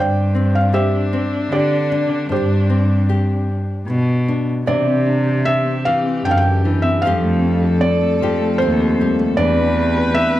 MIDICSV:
0, 0, Header, 1, 6, 480
1, 0, Start_track
1, 0, Key_signature, 0, "major"
1, 0, Tempo, 784314
1, 1406, Time_signature, 3, 2, 24, 8
1, 6364, End_track
2, 0, Start_track
2, 0, Title_t, "Felt piano"
2, 0, Program_c, 0, 0
2, 0, Note_on_c, 0, 67, 55
2, 0, Note_on_c, 0, 72, 53
2, 0, Note_on_c, 0, 74, 52
2, 0, Note_on_c, 0, 79, 80
2, 191, Note_off_c, 0, 67, 0
2, 338, Note_on_c, 0, 77, 72
2, 347, Note_off_c, 0, 79, 0
2, 444, Note_off_c, 0, 72, 0
2, 445, Note_off_c, 0, 77, 0
2, 450, Note_on_c, 0, 67, 55
2, 452, Note_on_c, 0, 76, 67
2, 453, Note_on_c, 0, 72, 55
2, 671, Note_off_c, 0, 74, 0
2, 925, Note_off_c, 0, 67, 0
2, 933, Note_on_c, 0, 74, 72
2, 935, Note_on_c, 0, 67, 57
2, 943, Note_off_c, 0, 76, 0
2, 1145, Note_off_c, 0, 72, 0
2, 1385, Note_off_c, 0, 74, 0
2, 1412, Note_off_c, 0, 67, 0
2, 1418, Note_on_c, 0, 72, 59
2, 1421, Note_on_c, 0, 67, 50
2, 2354, Note_off_c, 0, 72, 0
2, 2355, Note_off_c, 0, 67, 0
2, 2861, Note_on_c, 0, 74, 75
2, 3338, Note_on_c, 0, 76, 85
2, 3359, Note_off_c, 0, 74, 0
2, 3582, Note_on_c, 0, 77, 80
2, 3589, Note_off_c, 0, 76, 0
2, 3826, Note_on_c, 0, 79, 83
2, 3830, Note_off_c, 0, 77, 0
2, 3861, Note_on_c, 0, 77, 80
2, 3869, Note_off_c, 0, 79, 0
2, 3901, Note_on_c, 0, 79, 85
2, 3907, Note_off_c, 0, 77, 0
2, 4175, Note_on_c, 0, 76, 69
2, 4187, Note_off_c, 0, 79, 0
2, 4295, Note_on_c, 0, 77, 78
2, 4302, Note_off_c, 0, 76, 0
2, 4779, Note_on_c, 0, 74, 84
2, 4792, Note_off_c, 0, 77, 0
2, 5236, Note_off_c, 0, 74, 0
2, 5252, Note_on_c, 0, 72, 82
2, 5591, Note_off_c, 0, 72, 0
2, 5734, Note_on_c, 0, 74, 90
2, 6208, Note_on_c, 0, 76, 90
2, 6225, Note_off_c, 0, 74, 0
2, 6364, Note_off_c, 0, 76, 0
2, 6364, End_track
3, 0, Start_track
3, 0, Title_t, "Viola"
3, 0, Program_c, 1, 41
3, 0, Note_on_c, 1, 62, 101
3, 2591, Note_off_c, 1, 62, 0
3, 2858, Note_on_c, 1, 67, 78
3, 4313, Note_on_c, 1, 69, 95
3, 4322, Note_off_c, 1, 67, 0
3, 5736, Note_on_c, 1, 71, 107
3, 5745, Note_off_c, 1, 69, 0
3, 6364, Note_off_c, 1, 71, 0
3, 6364, End_track
4, 0, Start_track
4, 0, Title_t, "Harp"
4, 0, Program_c, 2, 46
4, 2853, Note_on_c, 2, 52, 63
4, 2975, Note_on_c, 2, 60, 49
4, 3100, Note_on_c, 2, 62, 50
4, 3219, Note_on_c, 2, 67, 58
4, 3346, Note_off_c, 2, 62, 0
4, 3349, Note_on_c, 2, 62, 54
4, 3462, Note_off_c, 2, 60, 0
4, 3464, Note_on_c, 2, 60, 45
4, 3577, Note_off_c, 2, 52, 0
4, 3585, Note_on_c, 2, 52, 69
4, 3703, Note_off_c, 2, 60, 0
4, 3706, Note_on_c, 2, 60, 51
4, 3823, Note_off_c, 2, 62, 0
4, 3825, Note_on_c, 2, 62, 53
4, 3946, Note_off_c, 2, 67, 0
4, 3948, Note_on_c, 2, 67, 53
4, 4062, Note_off_c, 2, 62, 0
4, 4064, Note_on_c, 2, 62, 51
4, 4183, Note_off_c, 2, 60, 0
4, 4185, Note_on_c, 2, 60, 48
4, 4302, Note_on_c, 2, 53, 68
4, 4333, Note_off_c, 2, 52, 0
4, 4426, Note_on_c, 2, 57, 51
4, 4543, Note_off_c, 2, 60, 0
4, 4545, Note_on_c, 2, 60, 52
4, 4666, Note_off_c, 2, 67, 0
4, 4668, Note_on_c, 2, 67, 55
4, 4786, Note_off_c, 2, 60, 0
4, 4788, Note_on_c, 2, 60, 54
4, 4902, Note_off_c, 2, 57, 0
4, 4905, Note_on_c, 2, 57, 51
4, 5018, Note_off_c, 2, 53, 0
4, 5025, Note_on_c, 2, 53, 70
4, 5143, Note_off_c, 2, 57, 0
4, 5145, Note_on_c, 2, 57, 54
4, 5267, Note_off_c, 2, 60, 0
4, 5270, Note_on_c, 2, 60, 53
4, 5384, Note_off_c, 2, 67, 0
4, 5386, Note_on_c, 2, 67, 61
4, 5507, Note_off_c, 2, 60, 0
4, 5509, Note_on_c, 2, 60, 53
4, 5623, Note_off_c, 2, 57, 0
4, 5626, Note_on_c, 2, 57, 52
4, 5741, Note_on_c, 2, 52, 73
4, 5769, Note_off_c, 2, 53, 0
4, 5777, Note_off_c, 2, 62, 0
4, 5859, Note_off_c, 2, 60, 0
4, 5862, Note_on_c, 2, 60, 59
4, 5977, Note_on_c, 2, 62, 56
4, 6092, Note_off_c, 2, 67, 0
4, 6095, Note_on_c, 2, 67, 60
4, 6214, Note_off_c, 2, 62, 0
4, 6217, Note_on_c, 2, 62, 52
4, 6331, Note_off_c, 2, 60, 0
4, 6334, Note_on_c, 2, 60, 51
4, 6364, Note_off_c, 2, 52, 0
4, 6364, Note_off_c, 2, 57, 0
4, 6364, Note_off_c, 2, 60, 0
4, 6364, Note_off_c, 2, 62, 0
4, 6364, Note_off_c, 2, 67, 0
4, 6364, End_track
5, 0, Start_track
5, 0, Title_t, "Nylon-string guitar"
5, 0, Program_c, 3, 24
5, 0, Note_on_c, 3, 43, 58
5, 0, Note_on_c, 3, 60, 49
5, 0, Note_on_c, 3, 62, 46
5, 0, Note_on_c, 3, 67, 54
5, 210, Note_off_c, 3, 60, 0
5, 213, Note_on_c, 3, 60, 49
5, 231, Note_off_c, 3, 62, 0
5, 393, Note_off_c, 3, 43, 0
5, 445, Note_on_c, 3, 50, 53
5, 449, Note_off_c, 3, 67, 0
5, 452, Note_on_c, 3, 67, 48
5, 688, Note_off_c, 3, 60, 0
5, 691, Note_on_c, 3, 60, 51
5, 878, Note_off_c, 3, 50, 0
5, 929, Note_on_c, 3, 50, 57
5, 1173, Note_on_c, 3, 62, 50
5, 1360, Note_off_c, 3, 50, 0
5, 1402, Note_on_c, 3, 43, 61
5, 1648, Note_off_c, 3, 60, 0
5, 1650, Note_on_c, 3, 60, 52
5, 1669, Note_off_c, 3, 62, 0
5, 1837, Note_off_c, 3, 43, 0
5, 1890, Note_on_c, 3, 50, 48
5, 1892, Note_off_c, 3, 67, 0
5, 1894, Note_on_c, 3, 67, 54
5, 2131, Note_off_c, 3, 60, 0
5, 2325, Note_off_c, 3, 50, 0
5, 2373, Note_on_c, 3, 50, 53
5, 2622, Note_on_c, 3, 62, 48
5, 2811, Note_off_c, 3, 50, 0
5, 2833, Note_off_c, 3, 62, 0
5, 2833, Note_off_c, 3, 67, 0
5, 2859, Note_on_c, 3, 48, 62
5, 2865, Note_on_c, 3, 62, 50
5, 3584, Note_off_c, 3, 48, 0
5, 3589, Note_on_c, 3, 52, 58
5, 3827, Note_off_c, 3, 52, 0
5, 3830, Note_on_c, 3, 50, 53
5, 4066, Note_off_c, 3, 50, 0
5, 4071, Note_on_c, 3, 52, 56
5, 4277, Note_off_c, 3, 62, 0
5, 4306, Note_off_c, 3, 52, 0
5, 4311, Note_on_c, 3, 41, 62
5, 4319, Note_on_c, 3, 53, 48
5, 4321, Note_on_c, 3, 55, 50
5, 4324, Note_on_c, 3, 60, 50
5, 4326, Note_on_c, 3, 67, 61
5, 5026, Note_off_c, 3, 53, 0
5, 5033, Note_on_c, 3, 53, 57
5, 5035, Note_off_c, 3, 67, 0
5, 5038, Note_on_c, 3, 67, 59
5, 5267, Note_off_c, 3, 60, 0
5, 5274, Note_on_c, 3, 60, 58
5, 5513, Note_off_c, 3, 55, 0
5, 5515, Note_on_c, 3, 55, 52
5, 5715, Note_off_c, 3, 41, 0
5, 5716, Note_off_c, 3, 53, 0
5, 5716, Note_off_c, 3, 60, 0
5, 5740, Note_on_c, 3, 40, 65
5, 5745, Note_on_c, 3, 62, 50
5, 6364, Note_off_c, 3, 40, 0
5, 6364, Note_off_c, 3, 55, 0
5, 6364, Note_off_c, 3, 62, 0
5, 6364, Note_off_c, 3, 67, 0
5, 6364, End_track
6, 0, Start_track
6, 0, Title_t, "Cello"
6, 0, Program_c, 4, 42
6, 0, Note_on_c, 4, 43, 78
6, 697, Note_off_c, 4, 43, 0
6, 925, Note_on_c, 4, 50, 89
6, 1292, Note_off_c, 4, 50, 0
6, 1407, Note_on_c, 4, 43, 81
6, 2144, Note_off_c, 4, 43, 0
6, 2373, Note_on_c, 4, 47, 88
6, 2744, Note_off_c, 4, 47, 0
6, 2857, Note_on_c, 4, 48, 79
6, 3595, Note_off_c, 4, 48, 0
6, 3821, Note_on_c, 4, 42, 76
6, 4188, Note_off_c, 4, 42, 0
6, 4310, Note_on_c, 4, 41, 81
6, 5040, Note_off_c, 4, 41, 0
6, 5267, Note_on_c, 4, 39, 79
6, 5629, Note_off_c, 4, 39, 0
6, 5740, Note_on_c, 4, 40, 90
6, 6364, Note_off_c, 4, 40, 0
6, 6364, End_track
0, 0, End_of_file